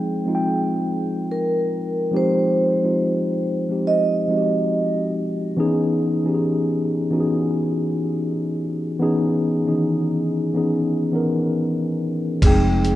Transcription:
Already playing: F3 G#3 C4 D#4 G#4 G5
0.25 F3 G#3 C4 D#4 F4
0.35 G5
1.31 A#4
2.11 F3 G#3 C4 D#4 G4
2.17 C5
2.82 F3 G#3 C4 D#4 F4
3.69 F3 G#3 C4 D#4 G4
3.87 D#5
4.28 F3 G#3 C4 D#4 F#4
4.38 G4
5.57 E3 B3 C#4 D#4 G#4
6.24 E3 B3 C#4 D#4 G4
6.34 G#4
7.11 E3 B3 C#4 D#4 F#4
7.20 G#4
8.99 E3 B3 C#4 D#4 G#4
9.65 D#3 B3 C#4 D#4 G#4
9.72 E3
10.54 E3 B3 C#4 D#4 G#4
11.12 E3 B3 C#4 D#4 A#4
12.42 F1 F3 G#3 C4 G#4, kick, closed hi-hat, crash
12.46 D#4 G5
12.85 closed hi-hat

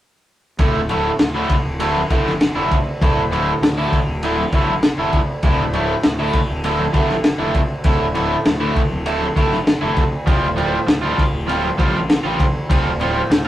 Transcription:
0.58 D1 A2 D3 A3 E4, kick, ride
0.89 A2 D3 A3 E4, ride, high conga, low conga
1.19 D2 D3, muted overdriven electric guitar stroke, snare, ride
1.35 A2 D3 A3 E4
1.49 kick, ride
1.65 D1
1.80 A2 D3 A3 E4, ride
1.84 D3
1.96 high conga
2.10 G1 A2 D3 A3 E4, kick, ride, low conga
2.26 snare, high conga
2.41 D2, snare, ride
2.55 F1 A2 D3 A3 E4
2.71 kick, ride
3.01 D1 A2 D3 A3 E4, kick, ride
3.06 A2
3.31 A2 D3 A3 E4, ride, high conga, low conga
3.61 D2, muted overdriven electric guitar stroke, snare, ride
3.67 D3
3.78 A2 D3 A3 E4
3.92 kick, ride, low conga
4.07 D1
4.23 A2 D3 A3 E4, ride
4.31 D3
4.37 high conga
4.52 G1 A2 D3 A3 E4, kick, ride, low conga
4.68 high conga
4.83 snare, ride
4.93 D2
4.98 F1 A2 D3 A3 E4
5.13 kick, ride, low conga
5.43 D1 A2 D3 A3 E4, kick, ride
5.54 A2
5.73 A2 D3 A3 E4, ride, high conga, low conga
6.03 D2, muted overdriven electric guitar stroke, snare, ride
6.17 A2 D3 A3 E4
6.33 kick, ride, low conga
6.49 D1
6.64 A2 D3 A3 E4, ride
6.78 D3, high conga
6.93 G1 A2 D3 A3 E4, kick, ride, low conga
7.09 snare, high conga
7.24 snare, ride
7.38 F1 D2 A2 D3 A3 E4
7.55 kick, ride, low conga
7.84 D1 A2 D3 A3 E4, kick, ride
8.02 A2
8.14 A2 D3 A3 E4, ride, high conga, low conga
8.45 D2, muted overdriven electric guitar stroke, snare, ride, high conga
8.60 A2 D3 A3 E4
8.75 kick, ride, low conga
8.90 D1, high conga
9.06 A2 D3 A3 E4, ride
9.21 high conga
9.26 D3
9.36 G1 A2 D3 A3 E4, kick, ride, low conga
9.51 snare, high conga
9.67 snare, ride
9.81 F1 A2 D3 A3 E4
9.86 D2
9.97 kick, ride, low conga
10.26 D1 F3 G3 C4 F4, kick, ride
10.48 A2
10.56 F3 G3 C4 F4, ride, high conga, low conga
10.87 D2, muted overdriven electric guitar stroke, snare, ride
11.03 F3 G3 C4 F4
11.10 D3
11.18 kick, ride
11.32 D1
11.47 F3 G3 C4 F4, ride
11.63 high conga
11.72 D3
11.78 A1 F3 G3 C4 F4, kick, ride, low conga
11.93 high conga
12.10 snare, ride
12.23 A1 F3 G3 C4 F4
12.35 D2, low conga
12.40 kick, ride
12.70 D1 F3 G3 C4 F4, kick, ride
12.98 A2 F3 G3 C4 F4, ride, high conga, low conga
13.30 D2, muted overdriven electric guitar stroke, snare, ride
13.45 C4 F4

